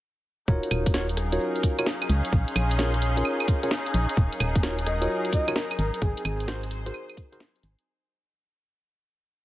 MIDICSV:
0, 0, Header, 1, 7, 480
1, 0, Start_track
1, 0, Tempo, 461538
1, 499, Time_signature, 4, 2, 24, 8
1, 9824, End_track
2, 0, Start_track
2, 0, Title_t, "Soft synth lead"
2, 0, Program_c, 0, 80
2, 5060, Note_on_c, 0, 75, 94
2, 5161, Note_off_c, 0, 75, 0
2, 5217, Note_on_c, 0, 75, 77
2, 5270, Note_off_c, 0, 75, 0
2, 5541, Note_on_c, 0, 75, 93
2, 5740, Note_off_c, 0, 75, 0
2, 5779, Note_on_c, 0, 70, 90
2, 5881, Note_off_c, 0, 70, 0
2, 5939, Note_on_c, 0, 70, 77
2, 5990, Note_off_c, 0, 70, 0
2, 6020, Note_on_c, 0, 70, 91
2, 6121, Note_off_c, 0, 70, 0
2, 6178, Note_on_c, 0, 70, 77
2, 6230, Note_off_c, 0, 70, 0
2, 6259, Note_on_c, 0, 68, 90
2, 6361, Note_off_c, 0, 68, 0
2, 6419, Note_on_c, 0, 68, 79
2, 6470, Note_off_c, 0, 68, 0
2, 6500, Note_on_c, 0, 68, 96
2, 6898, Note_off_c, 0, 68, 0
2, 9824, End_track
3, 0, Start_track
3, 0, Title_t, "Tine electric piano"
3, 0, Program_c, 1, 4
3, 499, Note_on_c, 1, 65, 90
3, 499, Note_on_c, 1, 70, 93
3, 499, Note_on_c, 1, 73, 108
3, 500, Note_on_c, 1, 63, 100
3, 500, Note_on_c, 1, 66, 91
3, 947, Note_off_c, 1, 63, 0
3, 947, Note_off_c, 1, 65, 0
3, 947, Note_off_c, 1, 66, 0
3, 947, Note_off_c, 1, 70, 0
3, 947, Note_off_c, 1, 73, 0
3, 979, Note_on_c, 1, 63, 97
3, 979, Note_on_c, 1, 65, 89
3, 979, Note_on_c, 1, 66, 88
3, 979, Note_on_c, 1, 73, 110
3, 980, Note_on_c, 1, 70, 89
3, 1106, Note_off_c, 1, 63, 0
3, 1106, Note_off_c, 1, 65, 0
3, 1106, Note_off_c, 1, 66, 0
3, 1106, Note_off_c, 1, 70, 0
3, 1106, Note_off_c, 1, 73, 0
3, 1377, Note_on_c, 1, 70, 76
3, 1378, Note_on_c, 1, 63, 83
3, 1378, Note_on_c, 1, 65, 76
3, 1378, Note_on_c, 1, 66, 76
3, 1378, Note_on_c, 1, 73, 95
3, 1820, Note_off_c, 1, 63, 0
3, 1820, Note_off_c, 1, 65, 0
3, 1820, Note_off_c, 1, 66, 0
3, 1820, Note_off_c, 1, 70, 0
3, 1820, Note_off_c, 1, 73, 0
3, 1858, Note_on_c, 1, 63, 97
3, 1858, Note_on_c, 1, 65, 89
3, 1858, Note_on_c, 1, 66, 87
3, 1858, Note_on_c, 1, 70, 90
3, 1858, Note_on_c, 1, 73, 108
3, 1923, Note_off_c, 1, 63, 0
3, 1923, Note_off_c, 1, 65, 0
3, 1923, Note_off_c, 1, 66, 0
3, 1923, Note_off_c, 1, 70, 0
3, 1923, Note_off_c, 1, 73, 0
3, 2898, Note_on_c, 1, 61, 96
3, 2898, Note_on_c, 1, 65, 89
3, 2898, Note_on_c, 1, 68, 88
3, 2898, Note_on_c, 1, 70, 90
3, 2898, Note_on_c, 1, 73, 110
3, 3025, Note_off_c, 1, 65, 0
3, 3025, Note_off_c, 1, 70, 0
3, 3026, Note_off_c, 1, 61, 0
3, 3026, Note_off_c, 1, 68, 0
3, 3026, Note_off_c, 1, 73, 0
3, 3297, Note_on_c, 1, 61, 86
3, 3297, Note_on_c, 1, 65, 77
3, 3297, Note_on_c, 1, 68, 77
3, 3297, Note_on_c, 1, 70, 77
3, 3297, Note_on_c, 1, 73, 97
3, 3739, Note_off_c, 1, 61, 0
3, 3739, Note_off_c, 1, 65, 0
3, 3739, Note_off_c, 1, 73, 0
3, 3740, Note_off_c, 1, 68, 0
3, 3740, Note_off_c, 1, 70, 0
3, 3778, Note_on_c, 1, 61, 94
3, 3778, Note_on_c, 1, 65, 89
3, 3778, Note_on_c, 1, 68, 90
3, 3778, Note_on_c, 1, 70, 90
3, 3778, Note_on_c, 1, 73, 106
3, 3843, Note_off_c, 1, 61, 0
3, 3843, Note_off_c, 1, 65, 0
3, 3843, Note_off_c, 1, 68, 0
3, 3843, Note_off_c, 1, 70, 0
3, 3843, Note_off_c, 1, 73, 0
3, 4818, Note_on_c, 1, 63, 98
3, 4818, Note_on_c, 1, 65, 90
3, 4818, Note_on_c, 1, 66, 90
3, 4818, Note_on_c, 1, 70, 92
3, 4818, Note_on_c, 1, 73, 111
3, 4945, Note_off_c, 1, 63, 0
3, 4945, Note_off_c, 1, 65, 0
3, 4945, Note_off_c, 1, 66, 0
3, 4945, Note_off_c, 1, 70, 0
3, 4946, Note_off_c, 1, 73, 0
3, 5216, Note_on_c, 1, 63, 83
3, 5216, Note_on_c, 1, 65, 79
3, 5216, Note_on_c, 1, 66, 80
3, 5216, Note_on_c, 1, 70, 77
3, 5216, Note_on_c, 1, 73, 93
3, 5659, Note_off_c, 1, 63, 0
3, 5659, Note_off_c, 1, 65, 0
3, 5659, Note_off_c, 1, 66, 0
3, 5659, Note_off_c, 1, 70, 0
3, 5659, Note_off_c, 1, 73, 0
3, 5697, Note_on_c, 1, 63, 97
3, 5697, Note_on_c, 1, 65, 92
3, 5697, Note_on_c, 1, 66, 89
3, 5697, Note_on_c, 1, 70, 91
3, 5697, Note_on_c, 1, 73, 109
3, 5762, Note_off_c, 1, 63, 0
3, 5762, Note_off_c, 1, 65, 0
3, 5762, Note_off_c, 1, 66, 0
3, 5762, Note_off_c, 1, 70, 0
3, 5762, Note_off_c, 1, 73, 0
3, 6739, Note_on_c, 1, 63, 100
3, 6739, Note_on_c, 1, 66, 93
3, 6739, Note_on_c, 1, 68, 92
3, 6739, Note_on_c, 1, 70, 91
3, 6739, Note_on_c, 1, 72, 110
3, 6866, Note_off_c, 1, 63, 0
3, 6866, Note_off_c, 1, 66, 0
3, 6866, Note_off_c, 1, 68, 0
3, 6866, Note_off_c, 1, 70, 0
3, 6866, Note_off_c, 1, 72, 0
3, 7138, Note_on_c, 1, 63, 85
3, 7138, Note_on_c, 1, 66, 79
3, 7138, Note_on_c, 1, 68, 79
3, 7138, Note_on_c, 1, 70, 80
3, 7138, Note_on_c, 1, 72, 95
3, 7580, Note_off_c, 1, 63, 0
3, 7580, Note_off_c, 1, 66, 0
3, 7580, Note_off_c, 1, 68, 0
3, 7580, Note_off_c, 1, 70, 0
3, 7580, Note_off_c, 1, 72, 0
3, 7617, Note_on_c, 1, 63, 98
3, 7617, Note_on_c, 1, 66, 90
3, 7617, Note_on_c, 1, 68, 89
3, 7617, Note_on_c, 1, 70, 92
3, 7617, Note_on_c, 1, 72, 109
3, 7682, Note_off_c, 1, 63, 0
3, 7682, Note_off_c, 1, 66, 0
3, 7682, Note_off_c, 1, 68, 0
3, 7682, Note_off_c, 1, 70, 0
3, 7682, Note_off_c, 1, 72, 0
3, 9824, End_track
4, 0, Start_track
4, 0, Title_t, "String section"
4, 0, Program_c, 2, 48
4, 499, Note_on_c, 2, 63, 90
4, 1202, Note_on_c, 2, 68, 92
4, 1392, Note_on_c, 2, 61, 86
4, 6018, Note_off_c, 2, 61, 0
4, 6673, Note_on_c, 2, 72, 95
4, 8178, Note_off_c, 2, 68, 0
4, 8178, Note_off_c, 2, 72, 0
4, 8179, Note_off_c, 2, 63, 0
4, 9824, End_track
5, 0, Start_track
5, 0, Title_t, "Analog synth pad"
5, 0, Program_c, 3, 89
5, 499, Note_on_c, 3, 61, 85
5, 499, Note_on_c, 3, 70, 93
5, 499, Note_on_c, 3, 77, 78
5, 500, Note_on_c, 3, 54, 78
5, 2400, Note_off_c, 3, 61, 0
5, 2400, Note_off_c, 3, 70, 0
5, 2401, Note_off_c, 3, 54, 0
5, 2419, Note_on_c, 3, 68, 79
5, 2420, Note_on_c, 3, 61, 85
5, 2420, Note_on_c, 3, 84, 96
5, 4320, Note_off_c, 3, 68, 0
5, 4320, Note_off_c, 3, 84, 0
5, 4340, Note_on_c, 3, 54, 81
5, 4340, Note_on_c, 3, 70, 95
5, 5978, Note_off_c, 3, 77, 0
5, 5984, Note_off_c, 3, 61, 0
5, 6020, Note_on_c, 3, 63, 79
5, 6021, Note_on_c, 3, 60, 83
5, 8141, Note_off_c, 3, 54, 0
5, 8141, Note_off_c, 3, 70, 0
5, 8158, Note_off_c, 3, 60, 0
5, 8158, Note_off_c, 3, 63, 0
5, 9824, End_track
6, 0, Start_track
6, 0, Title_t, "FM bass"
6, 0, Program_c, 4, 39
6, 499, Note_on_c, 4, 27, 100
6, 628, Note_off_c, 4, 27, 0
6, 740, Note_on_c, 4, 27, 96
6, 1435, Note_off_c, 4, 27, 0
6, 2178, Note_on_c, 4, 37, 102
6, 2307, Note_off_c, 4, 37, 0
6, 2419, Note_on_c, 4, 34, 98
6, 2547, Note_off_c, 4, 34, 0
6, 2659, Note_on_c, 4, 34, 95
6, 3354, Note_off_c, 4, 34, 0
6, 4099, Note_on_c, 4, 34, 84
6, 4228, Note_off_c, 4, 34, 0
6, 4338, Note_on_c, 4, 27, 99
6, 4467, Note_off_c, 4, 27, 0
6, 4579, Note_on_c, 4, 27, 97
6, 5274, Note_off_c, 4, 27, 0
6, 6018, Note_on_c, 4, 32, 104
6, 6147, Note_off_c, 4, 32, 0
6, 6258, Note_on_c, 4, 32, 101
6, 6387, Note_off_c, 4, 32, 0
6, 6499, Note_on_c, 4, 32, 96
6, 7194, Note_off_c, 4, 32, 0
6, 7939, Note_on_c, 4, 32, 87
6, 8068, Note_off_c, 4, 32, 0
6, 9824, End_track
7, 0, Start_track
7, 0, Title_t, "Drums"
7, 499, Note_on_c, 9, 36, 120
7, 500, Note_on_c, 9, 82, 40
7, 603, Note_off_c, 9, 36, 0
7, 604, Note_off_c, 9, 82, 0
7, 659, Note_on_c, 9, 42, 52
7, 659, Note_on_c, 9, 82, 20
7, 739, Note_off_c, 9, 82, 0
7, 739, Note_on_c, 9, 37, 58
7, 739, Note_on_c, 9, 46, 109
7, 739, Note_on_c, 9, 75, 75
7, 739, Note_on_c, 9, 82, 71
7, 763, Note_off_c, 9, 42, 0
7, 843, Note_off_c, 9, 37, 0
7, 843, Note_off_c, 9, 46, 0
7, 843, Note_off_c, 9, 75, 0
7, 843, Note_off_c, 9, 82, 0
7, 898, Note_on_c, 9, 36, 107
7, 898, Note_on_c, 9, 42, 66
7, 898, Note_on_c, 9, 82, 30
7, 978, Note_off_c, 9, 82, 0
7, 978, Note_on_c, 9, 38, 120
7, 978, Note_on_c, 9, 82, 41
7, 1002, Note_off_c, 9, 36, 0
7, 1002, Note_off_c, 9, 42, 0
7, 1082, Note_off_c, 9, 38, 0
7, 1082, Note_off_c, 9, 82, 0
7, 1138, Note_on_c, 9, 42, 54
7, 1138, Note_on_c, 9, 82, 20
7, 1218, Note_off_c, 9, 82, 0
7, 1218, Note_on_c, 9, 37, 61
7, 1218, Note_on_c, 9, 46, 100
7, 1218, Note_on_c, 9, 82, 73
7, 1242, Note_off_c, 9, 42, 0
7, 1322, Note_off_c, 9, 37, 0
7, 1322, Note_off_c, 9, 46, 0
7, 1322, Note_off_c, 9, 82, 0
7, 1377, Note_on_c, 9, 42, 66
7, 1377, Note_on_c, 9, 82, 31
7, 1459, Note_off_c, 9, 82, 0
7, 1459, Note_on_c, 9, 82, 40
7, 1481, Note_off_c, 9, 42, 0
7, 1563, Note_off_c, 9, 82, 0
7, 1618, Note_on_c, 9, 42, 37
7, 1618, Note_on_c, 9, 82, 21
7, 1699, Note_off_c, 9, 82, 0
7, 1699, Note_on_c, 9, 36, 63
7, 1699, Note_on_c, 9, 46, 112
7, 1699, Note_on_c, 9, 82, 71
7, 1722, Note_off_c, 9, 42, 0
7, 1803, Note_off_c, 9, 36, 0
7, 1803, Note_off_c, 9, 46, 0
7, 1803, Note_off_c, 9, 82, 0
7, 1858, Note_on_c, 9, 42, 66
7, 1858, Note_on_c, 9, 75, 78
7, 1858, Note_on_c, 9, 82, 30
7, 1939, Note_off_c, 9, 82, 0
7, 1939, Note_on_c, 9, 38, 119
7, 1939, Note_on_c, 9, 82, 40
7, 1962, Note_off_c, 9, 42, 0
7, 1962, Note_off_c, 9, 75, 0
7, 2043, Note_off_c, 9, 38, 0
7, 2043, Note_off_c, 9, 82, 0
7, 2098, Note_on_c, 9, 42, 37
7, 2098, Note_on_c, 9, 75, 60
7, 2098, Note_on_c, 9, 82, 21
7, 2179, Note_off_c, 9, 82, 0
7, 2179, Note_on_c, 9, 46, 96
7, 2179, Note_on_c, 9, 82, 72
7, 2202, Note_off_c, 9, 42, 0
7, 2202, Note_off_c, 9, 75, 0
7, 2283, Note_off_c, 9, 46, 0
7, 2283, Note_off_c, 9, 82, 0
7, 2338, Note_on_c, 9, 42, 67
7, 2338, Note_on_c, 9, 82, 31
7, 2419, Note_on_c, 9, 36, 127
7, 2420, Note_off_c, 9, 82, 0
7, 2420, Note_on_c, 9, 82, 41
7, 2442, Note_off_c, 9, 42, 0
7, 2523, Note_off_c, 9, 36, 0
7, 2524, Note_off_c, 9, 82, 0
7, 2579, Note_on_c, 9, 42, 51
7, 2579, Note_on_c, 9, 82, 20
7, 2660, Note_off_c, 9, 82, 0
7, 2660, Note_on_c, 9, 37, 59
7, 2660, Note_on_c, 9, 46, 107
7, 2660, Note_on_c, 9, 75, 79
7, 2660, Note_on_c, 9, 82, 72
7, 2683, Note_off_c, 9, 42, 0
7, 2764, Note_off_c, 9, 37, 0
7, 2764, Note_off_c, 9, 46, 0
7, 2764, Note_off_c, 9, 75, 0
7, 2764, Note_off_c, 9, 82, 0
7, 2820, Note_on_c, 9, 42, 65
7, 2820, Note_on_c, 9, 82, 30
7, 2901, Note_off_c, 9, 82, 0
7, 2901, Note_on_c, 9, 38, 127
7, 2901, Note_on_c, 9, 82, 40
7, 2924, Note_off_c, 9, 42, 0
7, 3005, Note_off_c, 9, 38, 0
7, 3005, Note_off_c, 9, 82, 0
7, 3059, Note_on_c, 9, 42, 52
7, 3059, Note_on_c, 9, 82, 21
7, 3140, Note_off_c, 9, 82, 0
7, 3140, Note_on_c, 9, 46, 95
7, 3140, Note_on_c, 9, 82, 71
7, 3163, Note_off_c, 9, 42, 0
7, 3244, Note_off_c, 9, 46, 0
7, 3244, Note_off_c, 9, 82, 0
7, 3300, Note_on_c, 9, 42, 65
7, 3300, Note_on_c, 9, 82, 31
7, 3379, Note_off_c, 9, 82, 0
7, 3379, Note_on_c, 9, 75, 63
7, 3379, Note_on_c, 9, 82, 40
7, 3404, Note_off_c, 9, 42, 0
7, 3483, Note_off_c, 9, 75, 0
7, 3483, Note_off_c, 9, 82, 0
7, 3538, Note_on_c, 9, 42, 36
7, 3538, Note_on_c, 9, 75, 80
7, 3538, Note_on_c, 9, 82, 21
7, 3618, Note_on_c, 9, 36, 111
7, 3620, Note_off_c, 9, 82, 0
7, 3620, Note_on_c, 9, 46, 107
7, 3620, Note_on_c, 9, 82, 71
7, 3642, Note_off_c, 9, 42, 0
7, 3642, Note_off_c, 9, 75, 0
7, 3722, Note_off_c, 9, 36, 0
7, 3724, Note_off_c, 9, 46, 0
7, 3724, Note_off_c, 9, 82, 0
7, 3778, Note_on_c, 9, 42, 63
7, 3778, Note_on_c, 9, 82, 30
7, 3859, Note_off_c, 9, 82, 0
7, 3859, Note_on_c, 9, 38, 125
7, 3859, Note_on_c, 9, 82, 40
7, 3882, Note_off_c, 9, 42, 0
7, 3963, Note_off_c, 9, 38, 0
7, 3963, Note_off_c, 9, 82, 0
7, 4019, Note_on_c, 9, 42, 36
7, 4019, Note_on_c, 9, 82, 20
7, 4099, Note_off_c, 9, 82, 0
7, 4099, Note_on_c, 9, 46, 93
7, 4099, Note_on_c, 9, 82, 69
7, 4123, Note_off_c, 9, 42, 0
7, 4203, Note_off_c, 9, 46, 0
7, 4203, Note_off_c, 9, 82, 0
7, 4258, Note_on_c, 9, 42, 65
7, 4258, Note_on_c, 9, 82, 30
7, 4338, Note_on_c, 9, 36, 127
7, 4339, Note_off_c, 9, 82, 0
7, 4339, Note_on_c, 9, 82, 43
7, 4362, Note_off_c, 9, 42, 0
7, 4442, Note_off_c, 9, 36, 0
7, 4443, Note_off_c, 9, 82, 0
7, 4498, Note_on_c, 9, 42, 52
7, 4498, Note_on_c, 9, 82, 21
7, 4579, Note_off_c, 9, 82, 0
7, 4579, Note_on_c, 9, 37, 58
7, 4579, Note_on_c, 9, 46, 103
7, 4579, Note_on_c, 9, 75, 81
7, 4579, Note_on_c, 9, 82, 73
7, 4602, Note_off_c, 9, 42, 0
7, 4683, Note_off_c, 9, 37, 0
7, 4683, Note_off_c, 9, 46, 0
7, 4683, Note_off_c, 9, 75, 0
7, 4683, Note_off_c, 9, 82, 0
7, 4737, Note_on_c, 9, 36, 116
7, 4738, Note_on_c, 9, 42, 66
7, 4738, Note_on_c, 9, 82, 33
7, 4819, Note_off_c, 9, 82, 0
7, 4819, Note_on_c, 9, 38, 127
7, 4819, Note_on_c, 9, 82, 43
7, 4841, Note_off_c, 9, 36, 0
7, 4842, Note_off_c, 9, 42, 0
7, 4923, Note_off_c, 9, 38, 0
7, 4923, Note_off_c, 9, 82, 0
7, 4978, Note_on_c, 9, 42, 52
7, 4978, Note_on_c, 9, 82, 22
7, 5060, Note_off_c, 9, 82, 0
7, 5060, Note_on_c, 9, 37, 60
7, 5060, Note_on_c, 9, 46, 92
7, 5060, Note_on_c, 9, 82, 75
7, 5082, Note_off_c, 9, 42, 0
7, 5164, Note_off_c, 9, 37, 0
7, 5164, Note_off_c, 9, 46, 0
7, 5164, Note_off_c, 9, 82, 0
7, 5219, Note_on_c, 9, 42, 65
7, 5219, Note_on_c, 9, 82, 33
7, 5300, Note_off_c, 9, 82, 0
7, 5300, Note_on_c, 9, 82, 42
7, 5323, Note_off_c, 9, 42, 0
7, 5404, Note_off_c, 9, 82, 0
7, 5458, Note_on_c, 9, 42, 36
7, 5458, Note_on_c, 9, 82, 21
7, 5538, Note_on_c, 9, 36, 68
7, 5540, Note_off_c, 9, 82, 0
7, 5540, Note_on_c, 9, 46, 106
7, 5540, Note_on_c, 9, 82, 73
7, 5562, Note_off_c, 9, 42, 0
7, 5642, Note_off_c, 9, 36, 0
7, 5644, Note_off_c, 9, 46, 0
7, 5644, Note_off_c, 9, 82, 0
7, 5699, Note_on_c, 9, 42, 63
7, 5699, Note_on_c, 9, 75, 83
7, 5699, Note_on_c, 9, 82, 30
7, 5780, Note_off_c, 9, 82, 0
7, 5780, Note_on_c, 9, 38, 127
7, 5780, Note_on_c, 9, 82, 42
7, 5803, Note_off_c, 9, 42, 0
7, 5803, Note_off_c, 9, 75, 0
7, 5884, Note_off_c, 9, 38, 0
7, 5884, Note_off_c, 9, 82, 0
7, 5938, Note_on_c, 9, 42, 35
7, 5938, Note_on_c, 9, 75, 64
7, 5938, Note_on_c, 9, 82, 21
7, 6019, Note_off_c, 9, 82, 0
7, 6019, Note_on_c, 9, 46, 90
7, 6019, Note_on_c, 9, 82, 71
7, 6042, Note_off_c, 9, 42, 0
7, 6042, Note_off_c, 9, 75, 0
7, 6123, Note_off_c, 9, 46, 0
7, 6123, Note_off_c, 9, 82, 0
7, 6178, Note_on_c, 9, 42, 64
7, 6178, Note_on_c, 9, 82, 32
7, 6258, Note_on_c, 9, 36, 127
7, 6260, Note_off_c, 9, 82, 0
7, 6260, Note_on_c, 9, 82, 44
7, 6282, Note_off_c, 9, 42, 0
7, 6362, Note_off_c, 9, 36, 0
7, 6364, Note_off_c, 9, 82, 0
7, 6420, Note_on_c, 9, 42, 53
7, 6420, Note_on_c, 9, 82, 21
7, 6500, Note_off_c, 9, 82, 0
7, 6500, Note_on_c, 9, 37, 56
7, 6500, Note_on_c, 9, 46, 101
7, 6500, Note_on_c, 9, 75, 84
7, 6500, Note_on_c, 9, 82, 75
7, 6524, Note_off_c, 9, 42, 0
7, 6604, Note_off_c, 9, 37, 0
7, 6604, Note_off_c, 9, 46, 0
7, 6604, Note_off_c, 9, 75, 0
7, 6604, Note_off_c, 9, 82, 0
7, 6659, Note_on_c, 9, 42, 66
7, 6659, Note_on_c, 9, 82, 33
7, 6740, Note_off_c, 9, 82, 0
7, 6740, Note_on_c, 9, 38, 127
7, 6740, Note_on_c, 9, 82, 44
7, 6763, Note_off_c, 9, 42, 0
7, 6844, Note_off_c, 9, 38, 0
7, 6844, Note_off_c, 9, 82, 0
7, 6899, Note_on_c, 9, 42, 53
7, 6899, Note_on_c, 9, 82, 22
7, 6978, Note_off_c, 9, 82, 0
7, 6978, Note_on_c, 9, 46, 92
7, 6978, Note_on_c, 9, 82, 79
7, 7003, Note_off_c, 9, 42, 0
7, 7082, Note_off_c, 9, 46, 0
7, 7082, Note_off_c, 9, 82, 0
7, 7138, Note_on_c, 9, 42, 67
7, 7138, Note_on_c, 9, 82, 35
7, 7219, Note_off_c, 9, 82, 0
7, 7219, Note_on_c, 9, 75, 67
7, 7219, Note_on_c, 9, 82, 44
7, 7242, Note_off_c, 9, 42, 0
7, 7323, Note_off_c, 9, 75, 0
7, 7323, Note_off_c, 9, 82, 0
7, 7379, Note_on_c, 9, 42, 37
7, 7379, Note_on_c, 9, 75, 87
7, 7379, Note_on_c, 9, 82, 22
7, 7458, Note_on_c, 9, 36, 115
7, 7460, Note_off_c, 9, 82, 0
7, 7460, Note_on_c, 9, 46, 104
7, 7460, Note_on_c, 9, 82, 77
7, 7483, Note_off_c, 9, 42, 0
7, 7483, Note_off_c, 9, 75, 0
7, 7562, Note_off_c, 9, 36, 0
7, 7564, Note_off_c, 9, 46, 0
7, 7564, Note_off_c, 9, 82, 0
7, 7619, Note_on_c, 9, 42, 65
7, 7619, Note_on_c, 9, 82, 34
7, 7700, Note_off_c, 9, 82, 0
7, 7700, Note_on_c, 9, 38, 124
7, 7700, Note_on_c, 9, 82, 43
7, 7723, Note_off_c, 9, 42, 0
7, 7804, Note_off_c, 9, 38, 0
7, 7804, Note_off_c, 9, 82, 0
7, 7859, Note_on_c, 9, 42, 36
7, 7859, Note_on_c, 9, 82, 21
7, 7938, Note_off_c, 9, 82, 0
7, 7938, Note_on_c, 9, 46, 89
7, 7938, Note_on_c, 9, 82, 75
7, 7963, Note_off_c, 9, 42, 0
7, 8042, Note_off_c, 9, 46, 0
7, 8042, Note_off_c, 9, 82, 0
7, 8098, Note_on_c, 9, 42, 65
7, 8098, Note_on_c, 9, 82, 34
7, 8202, Note_off_c, 9, 42, 0
7, 8202, Note_off_c, 9, 82, 0
7, 9824, End_track
0, 0, End_of_file